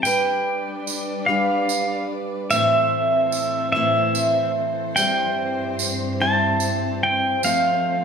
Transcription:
0.03 1.28 G3 medium
0.03 2.49 G3 medium
0.03 2.49 D4 medium
0.03 1.28 D4 medium
0.03 1.28 G4 medium
0.03 2.49 B4 medium
0.03 1.27 B4 medium
0.03 2.48 D5 medium
0.03 1.31 G5 medium
0.03 tambourine medium
0.87 tambourine medium
1.26 2.52 G3 medium
1.26 2.52 D4 medium
1.26 2.51 G4 medium
1.26 2.51 B4 medium
1.26 2.05 F5 medium
1.69 tambourine medium
2.50 3.74 A2 medium
2.50 7.38 E3 medium
2.50 3.77 E3 medium
2.50 3.74 A3 medium
2.50 4.95 C4 medium
2.50 3.76 C4 medium
2.50 3.76 E4 medium
2.50 4.94 A4 medium
2.50 8.04 C5 medium
2.50 3.74 C5 medium
2.50 3.71 E5 loud
2.50 tambourine medium
3.32 tambourine medium
3.72 4.97 A3 medium
3.72 4.99 C4 medium
3.72 4.98 E4 medium
3.72 5.00 C5 medium
3.72 4.51 E5 loud
3.77 4.99 A2 medium
3.77 4.98 E3 medium
4.15 tambourine medium
4.96 7.40 G2 medium
4.96 6.20 G3 medium
4.96 8.04 C4 medium
4.96 6.22 C4 medium
4.96 6.20 E4 medium
4.96 7.40 G4 medium
4.96 5.74 G5 loud
4.96 tambourine medium
5.01 6.20 C5 medium
5.79 tambourine medium
6.21 7.44 G3 medium
6.21 7.44 C4 medium
6.21 7.43 E4 medium
6.21 7.45 C5 medium
6.21 7.03 A5 medium
6.60 tambourine loud
7.03 7.45 G5 loud
7.43 8.04 F3 medium
7.43 8.04 A3 medium
7.43 8.04 C4 medium
7.43 8.04 F4 medium
7.43 8.04 A4 medium
7.43 8.04 C5 medium
7.43 8.04 F5 loud
7.43 tambourine medium

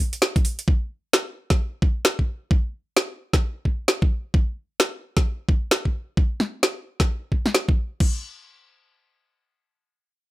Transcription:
0.13 closed hi-hat medium
0.22 snare loud
0.36 kick loud
0.36 closed hi-hat soft
0.45 open hi-hat medium
0.59 closed hi-hat medium
0.68 kick loud
1.13 snare loud
1.50 kick loud
1.50 snare medium
1.82 kick loud
2.05 snare loud
2.19 kick medium
2.51 kick loud
2.97 snare loud
3.33 kick medium
3.33 snare medium
3.65 kick medium
3.88 snare loud
4.02 kick loud
4.34 kick loud
4.80 snare loud
5.17 kick medium
5.17 snare medium
5.49 kick medium
5.71 snare loud
5.85 kick medium
6.17 kick loud
6.40 snare soft
6.63 snare loud
7.00 kick medium
7.00 snare medium
7.32 kick medium
7.46 snare soft
7.54 snare loud
7.69 kick medium
8.00 kick loud
8.00 crash medium

